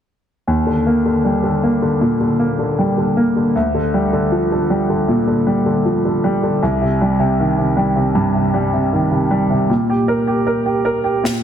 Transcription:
0.47 grand piano D#2
0.67 grand piano D3
0.87 grand piano A#3
1.05 grand piano D3
1.25 grand piano G3
1.44 grand piano D3
1.63 grand piano A#3
1.82 grand piano D3
2.01 grand piano A#2
2.21 grand piano D3
2.39 grand piano A#3
2.59 grand piano D3
2.79 grand piano G3
2.98 grand piano D3
3.17 grand piano A#3
3.36 grand piano D3
3.55 grand piano D2
3.74 grand piano D3
3.94 grand piano G3
4.13 grand piano D3
4.32 grand piano F3
4.52 grand piano D3
4.70 grand piano G3
4.90 grand piano D3
5.08 grand piano A#2
5.27 grand piano D3
5.47 grand piano G3
5.66 grand piano D3
5.85 grand piano F3
6.05 grand piano D3
6.24 grand piano G3
6.43 grand piano D3
6.63 grand piano C2
6.81 grand piano C3
7.01 grand piano G3
7.20 grand piano C3
7.40 grand piano D#3
7.58 grand piano C3
7.77 grand piano G3
7.96 grand piano C3
8.15 grand piano G2
8.35 grand piano C3
8.54 grand piano G3
8.73 grand piano C3
8.93 grand piano D#3
9.11 grand piano C3
9.31 grand piano G3
9.50 grand piano C3
9.69 grand piano A#2
9.90 grand piano G4
10.08 grand piano A#4
10.27 grand piano G4
10.47 grand piano A#4
10.66 grand piano G4
10.85 grand piano A#4
11.04 grand piano G4
11.23 grand piano A#2, snare

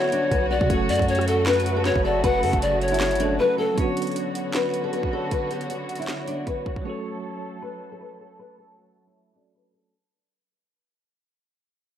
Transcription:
Already playing: string section D3 B3 F#4 C#5, tine electric piano F#3 B3 C#4 D4 F#4, steel-string acoustic guitar E4, pan flute C#5
0.12 steel-string acoustic guitar D4, closed hi-hat
0.32 808-style bass B1, steel-string acoustic guitar B4, kick, closed hi-hat
0.51 steel-string acoustic guitar F#4, pan flute D5
0.61 808-style bass B2, kick
0.66 808-style bass F#1, string section C#3 F#3 A3, tine electric piano F#3 A3, steel-string acoustic guitar C#5, kick, closed hi-hat
0.70 tine electric piano C#4 F#4 A4
0.89 808-style bass F#2, pan flute D5, closed hi-hat, open hi-hat
0.96 808-style bass F#2, kick, closed hi-hat
1.02 closed hi-hat
1.08 pan flute C#5, closed hi-hat
1.15 cross-stick, closed hi-hat
1.21 closed hi-hat
1.27 pan flute A4, closed hi-hat
1.46 steel-string acoustic guitar B4, pan flute B4, snare, clap, closed hi-hat
1.53 closed hi-hat
1.60 closed hi-hat
1.66 closed hi-hat
1.76 steel-string acoustic guitar A4
1.85 steel-string acoustic guitar B4, pan flute C#5, snare, closed hi-hat
1.96 808-style bass F#1, kick
2.05 steel-string acoustic guitar A4, pan flute D5
2.24 808-style bass F#1, steel-string acoustic guitar B4, pan flute F#5, kick, closed hi-hat
2.43 808-style bass F#2, steel-string acoustic guitar A4, closed hi-hat, open hi-hat
2.53 808-style bass F#1, kick, closed hi-hat
2.62 steel-string acoustic guitar F#4, pan flute D5, closed hi-hat
2.81 pan flute C#5, closed hi-hat
2.88 steel-string acoustic guitar E4, closed hi-hat
2.94 closed hi-hat
3.00 snare, clap, closed hi-hat
3.06 closed hi-hat
3.11 808-style bass G1, closed hi-hat
3.15 tine electric piano F#3 A3, closed hi-hat
3.20 tine electric piano C#4 F#4 A4, steel-string acoustic guitar D4, closed hi-hat
3.39 pan flute B4, steel-string acoustic guitar B4
3.58 steel-string acoustic guitar A4, pan flute A4
3.74 string section D3 B3 F#4 C#5, tine electric piano F#3 B3
3.78 tine electric piano C#4 D4, steel-string acoustic guitar C#5, kick, closed hi-hat
3.82 tine electric piano F#4
3.97 closed hi-hat
4.02 closed hi-hat
4.07 closed hi-hat
4.12 closed hi-hat
4.16 closed hi-hat
4.35 closed hi-hat
4.54 steel-string acoustic guitar B4, snare, clap, closed hi-hat
4.74 closed hi-hat
4.84 steel-string acoustic guitar A4
4.93 steel-string acoustic guitar B4, closed hi-hat
5.03 kick
5.13 steel-string acoustic guitar A4
5.31 steel-string acoustic guitar B4, kick, closed hi-hat
5.51 steel-string acoustic guitar G4, closed hi-hat
5.61 closed hi-hat
5.70 steel-string acoustic guitar F#4, closed hi-hat
5.89 closed hi-hat
5.96 steel-string acoustic guitar E4, closed hi-hat
6.02 closed hi-hat
6.08 snare, clap, closed hi-hat
6.28 steel-string acoustic guitar D4, closed hi-hat
6.47 steel-string acoustic guitar B4, kick, closed hi-hat
6.66 steel-string acoustic guitar F#4, kick
6.76 kick
6.82 tine electric piano F#3 A3, string section F#3 A3 A4, steel-string acoustic guitar C#5
6.86 tine electric piano C#4 F#4
6.90 tine electric piano A4
7.62 steel-string acoustic guitar B4
7.92 steel-string acoustic guitar A4
8.01 steel-string acoustic guitar B4
8.20 steel-string acoustic guitar A4
8.39 steel-string acoustic guitar B4
8.58 steel-string acoustic guitar A4
8.78 steel-string acoustic guitar F#4
9.07 steel-string acoustic guitar E4
9.33 tine electric piano F#3 A3 C#4 F#4, steel-string acoustic guitar D4
9.37 tine electric piano A4
9.55 steel-string acoustic guitar B4
9.74 steel-string acoustic guitar A4

